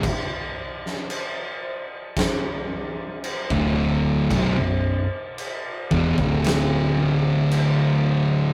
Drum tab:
CC |x---x---x---x---|x---x---x---x---|
SD |---o----o-------|--------o-------|
BD |o-------o----o--|o-----oo--------|